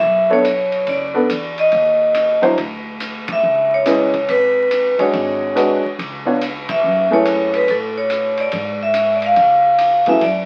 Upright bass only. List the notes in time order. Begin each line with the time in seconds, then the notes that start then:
0.02 B1
0.87 F#1
1.30 E2
1.72 D#2
2.57 D2
3.43 C#2
4.28 G#1
4.99 F#1
5.13 G#1
5.84 muted upright bass stroke
5.99 C#2
6.84 F#2
7.69 A2
8.53 G#2
9.37 C#2
10.07 F2
10.22 F#2